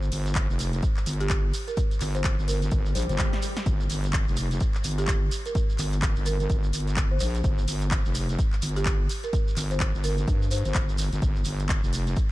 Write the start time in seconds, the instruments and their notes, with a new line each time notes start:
Already playing: wobble bass G1
0.02 shekere
0.12 wobble bass G1, open hi-hat, shekere
0.26 closed hi-hat, shekere
0.35 kick, clap, closed hi-hat, shekere
0.50 wobble bass F1, shekere
0.59 open hi-hat, shekere
0.73 closed hi-hat, shekere
0.83 kick, closed hi-hat, shekere
0.97 clap, shekere
1.06 wobble bass G1, open hi-hat, shekere
1.13 closed hi-hat
1.20 marimba G4, closed hi-hat, shekere
1.30 kick, clap, closed hi-hat, shekere
1.54 open hi-hat, shekere
1.68 marimba A#4, closed hi-hat, shekere
1.77 kick, closed hi-hat, shekere
1.91 closed hi-hat, shekere
2.01 wobble bass G1, clap, open hi-hat, shekere
2.15 marimba C5, closed hi-hat, shekere
2.24 kick, clap, closed hi-hat, shekere
2.39 wobble bass G1, shekere
2.48 marimba A#4, open hi-hat, shekere
2.62 closed hi-hat, shekere
2.71 wobble bass G1, kick, closed hi-hat, swell, shekere
2.86 shekere
2.95 wobble bass A#1, marimba C5, open hi-hat, shekere
3.02 closed hi-hat
3.09 wobble bass G1, marimba C5, closed hi-hat, shekere
3.18 kick, snare, clap, closed hi-hat, shekere
3.33 snare
3.42 open hi-hat, shekere
3.57 snare, closed hi-hat, shekere
3.66 wobble bass G1, kick, closed hi-hat, shekere
3.80 shekere
3.90 wobble bass G1, open hi-hat, shekere
4.04 closed hi-hat, shekere
4.13 kick, clap, closed hi-hat, shekere
4.28 wobble bass F1, shekere
4.37 open hi-hat, shekere
4.51 closed hi-hat, shekere
4.60 kick, closed hi-hat, shekere
4.75 clap, shekere
4.84 wobble bass G1, open hi-hat, shekere
4.91 closed hi-hat
4.98 marimba G4, closed hi-hat, shekere
5.08 kick, clap, closed hi-hat, shekere
5.31 open hi-hat, shekere
5.46 marimba A#4, closed hi-hat, shekere
5.55 kick, closed hi-hat, shekere
5.70 shekere
5.79 wobble bass G1, clap, open hi-hat, shekere
5.93 closed hi-hat, shekere
6.02 kick, clap, closed hi-hat, shekere
6.16 wobble bass G1, shekere
6.26 marimba A#4, open hi-hat, shekere
6.40 marimba A#4, closed hi-hat, shekere
6.50 wobble bass G1, kick, closed hi-hat, shekere
6.63 shekere
6.73 wobble bass G1, open hi-hat, shekere
6.80 closed hi-hat
6.87 closed hi-hat, shekere
6.97 kick, clap, closed hi-hat, shekere
7.11 marimba C5
7.20 wobble bass A#1, marimba C5, open hi-hat, shekere
7.35 marimba C5, closed hi-hat, shekere
7.44 wobble bass G1, kick, closed hi-hat, shekere
7.58 shekere
7.68 wobble bass G1, open hi-hat, shekere
7.82 closed hi-hat, shekere
7.91 kick, clap, closed hi-hat, shekere
8.06 wobble bass F1, shekere
8.15 open hi-hat, shekere
8.29 closed hi-hat, shekere
8.39 kick, closed hi-hat, shekere
8.53 clap, shekere
8.62 wobble bass G1, open hi-hat, shekere
8.69 closed hi-hat
8.76 marimba G4, closed hi-hat, shekere
8.86 kick, clap, closed hi-hat, shekere
9.09 open hi-hat, shekere
9.24 marimba A#4, closed hi-hat, shekere
9.33 kick, closed hi-hat, shekere
9.48 shekere
9.57 wobble bass G1, clap, open hi-hat, shekere
9.71 marimba C5, closed hi-hat, shekere
9.80 kick, clap, closed hi-hat, shekere
9.95 wobble bass G1, shekere
10.04 marimba A#4, open hi-hat, shekere
10.18 closed hi-hat, shekere
10.28 wobble bass G2, kick, closed hi-hat, shekere
10.42 shekere
10.51 marimba C5, open hi-hat, shekere
10.58 closed hi-hat
10.65 wobble bass G1, marimba C5, closed hi-hat, shekere
10.75 wobble bass G1, kick, clap, closed hi-hat, shekere
10.89 shekere
10.98 open hi-hat, shekere
11.13 wobble bass G1, closed hi-hat, shekere
11.22 wobble bass G1, kick, closed hi-hat, shekere
11.36 shekere
11.45 wobble bass G1, open hi-hat, shekere
11.60 closed hi-hat, shekere
11.69 kick, clap, closed hi-hat, shekere
11.83 wobble bass F1, shekere
11.93 open hi-hat, shekere
12.07 closed hi-hat, shekere
12.16 kick, closed hi-hat, shekere